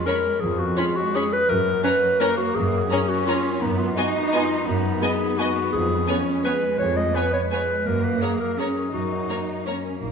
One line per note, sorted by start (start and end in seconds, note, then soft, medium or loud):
0.00 0.40 F2 medium
0.00 0.42 G#3 medium
0.00 0.57 B3 medium
0.00 0.75 C#4 soft
0.00 0.23 C#5 medium
0.06 0.14 C#4 medium
0.06 0.42 A#4 loud
0.06 1.13 B4 medium
0.06 0.15 C#5 medium
0.06 0.15 B5 medium
0.24 0.94 C#5 medium
0.41 1.50 F2 medium
0.41 0.71 F2 medium
0.41 0.77 F3 medium
0.41 0.60 G#4 medium
0.58 1.50 B3 medium
0.58 0.79 F#4 loud
0.76 1.49 G#3 medium
0.76 1.83 C#4 medium
0.76 0.85 C#4 medium
0.76 0.97 F4 loud
0.76 0.84 C#5 medium
0.76 0.85 B5 medium
0.95 1.16 F#4 loud
0.95 1.31 C#5 medium
1.14 1.23 C#4 medium
1.14 1.35 G#4 loud
1.14 1.50 B4 medium
1.14 1.23 C#5 medium
1.14 1.23 B5 medium
1.32 1.51 B4 loud
1.32 2.01 C#5 medium
1.49 2.54 F#2 medium
1.49 1.78 F#2 medium
1.49 2.18 F#3 medium
1.49 1.83 A#4 loud
1.66 2.71 A#3 medium
1.83 1.91 C#4 medium
1.83 2.89 C#4 medium
1.83 2.21 B4 loud
1.83 1.92 C#5 medium
1.83 1.93 A#5 medium
2.02 2.36 C#5 medium
2.20 2.89 A#3 medium
2.20 2.28 C#4 medium
2.20 2.37 A#4 loud
2.20 3.26 A#4 medium
2.20 2.28 C#5 medium
2.20 2.29 A#5 medium
2.37 2.56 F#4 loud
2.37 3.08 C#5 medium
2.55 3.61 F#2 medium
2.55 2.85 F#2 medium
2.55 3.10 G#4 loud
2.73 3.64 A#3 medium
2.90 3.61 C#4 loud
2.90 3.64 C#4 medium
2.90 2.99 C#4 medium
2.90 3.00 C#5 medium
2.90 2.98 A#5 medium
3.09 3.26 F#4 loud
3.09 3.44 C#5 medium
3.27 3.36 C#4 medium
3.27 3.64 F4 loud
3.27 3.64 A#4 medium
3.27 3.36 C#5 medium
3.27 3.36 A#5 medium
3.45 3.64 C#5 medium
3.62 4.66 F#2 medium
3.62 3.91 F#2 medium
3.62 3.97 B3 medium
3.62 3.80 D#4 medium
3.78 4.83 G#3 medium
3.78 3.98 F4 loud
3.97 4.06 B3 medium
3.97 4.66 D#4 loud
3.97 5.00 D#4 medium
3.97 4.35 F#4 loud
3.97 4.05 D#5 medium
3.97 4.05 G#5 medium
4.16 4.50 B4 medium
4.33 4.41 B3 medium
4.33 4.67 F4 loud
4.33 5.37 G#4 medium
4.33 4.41 D#5 medium
4.33 4.41 G#5 medium
4.51 5.19 B4 medium
4.67 5.75 F#2 medium
4.67 4.96 F#2 medium
4.67 6.08 B3 medium
4.67 5.04 D#4 medium
4.84 5.89 G#3 medium
5.02 5.10 B3 medium
5.02 5.75 D#4 medium
5.02 5.40 G#4 loud
5.02 5.10 D#5 medium
5.02 5.10 G#5 medium
5.20 5.55 B4 medium
5.38 5.46 B3 medium
5.38 5.72 F#4 loud
5.38 6.44 G#4 medium
5.38 5.47 D#5 medium
5.38 5.46 G#5 medium
5.56 6.25 B4 medium
5.72 6.78 F2 medium
5.72 6.02 F2 medium
5.72 6.18 G#4 loud
5.90 6.96 G#3 medium
6.07 6.16 B3 medium
6.07 6.45 C#4 medium
6.07 7.14 C#4 medium
6.07 6.16 C#5 medium
6.07 6.15 G#5 medium
6.26 6.61 B4 medium
6.44 7.15 G#3 medium
6.44 6.53 B3 medium
6.44 7.50 G#4 medium
6.44 6.77 B4 loud
6.44 6.54 C#5 medium
6.44 6.52 G#5 medium
6.63 7.33 B4 medium
6.79 7.88 F2 medium
6.79 7.09 F2 medium
6.79 6.98 C#5 loud
6.97 7.88 G#3 medium
6.97 7.17 D#5 medium
7.15 7.52 B3 medium
7.15 7.23 B3 medium
7.15 8.21 C#4 soft
7.15 7.33 B4 loud
7.15 7.24 C#5 medium
7.15 7.23 G#5 medium
7.34 7.68 B4 medium
7.34 7.42 C#5 medium
7.51 7.86 G#3 medium
7.51 7.60 B3 medium
7.51 7.88 G#4 medium
7.51 7.88 B4 medium
7.51 7.61 C#5 medium
7.51 7.59 G#5 medium
7.70 7.88 B4 medium
7.87 8.93 F#2 medium
7.87 8.16 F#2 medium
7.87 8.59 A#3 medium
7.87 8.05 A#4 medium
8.04 9.10 A#3 soft
8.04 8.21 B4 medium
8.21 8.31 A#3 medium
8.21 8.58 C#4 soft
8.21 8.40 G#4 medium
8.21 8.29 C#5 soft
8.21 8.30 A#5 soft
8.40 8.60 A#4 medium
8.40 8.76 A#4 soft
8.59 8.68 A#3 soft
8.59 9.28 C#4 medium
8.59 8.94 C#4 medium
8.59 8.93 G#4 medium
8.59 8.67 C#5 medium
8.59 8.67 A#5 soft
8.77 9.47 A#4 soft
8.93 9.23 F#2 medium
8.93 10.02 F#2 medium
8.93 9.64 D#4 medium
8.93 9.64 F#4 medium
9.11 10.12 A#3 soft
9.29 9.38 A#3 soft
9.29 9.65 C#4 soft
9.29 9.38 C#5 soft
9.29 9.37 A#5 soft
9.48 9.83 A#4 soft
9.66 9.75 A#3 soft
9.66 10.01 C#4 medium
9.66 10.12 C#4 soft
9.66 9.74 C#5 soft
9.66 9.74 A#5 soft
9.84 10.12 A#4 soft
10.01 10.12 A#1 medium
10.01 10.12 A#2 medium
10.01 10.12 A#3 soft
10.01 10.12 D#4 medium